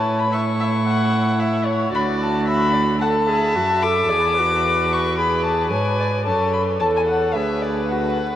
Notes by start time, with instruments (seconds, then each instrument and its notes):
Already playing: cello A2, viola E4, violin C#5 A5
0.19 violin B5
0.32 viola E4, violin E5 C#6
0.60 violin E5
0.88 violin F#5
1.40 violin E5
1.65 violin C#5
1.93 cello D2, viola F#4, violin D5 B5
2.22 violin A5
2.47 violin E5 B5
2.73 violin D5
3.01 viola A4, violin F#5 A5
3.27 viola G#4, violin E5
3.55 cello F#2, viola F#4
3.83 viola A4, violin D6
4.09 cello E2, viola G#4, violin D5
4.38 viola F#4, violin B4
4.93 violin C#6
5.18 viola G#4, violin B5
5.44 violin A5
5.70 cello G#2, viola B4, violin C#5 G#5
6.00 violin D5
6.25 cello F#2, viola A4, violin C#5 A5
6.53 violin B5
6.80 cello E2, violin A4 A5, viola A4
6.96 violin G#5
7.07 violin F#5
7.34 cello D2, viola G#4, violin B4 E5
7.62 violin D5
7.89 viola F#4, violin F#5
8.19 viola B4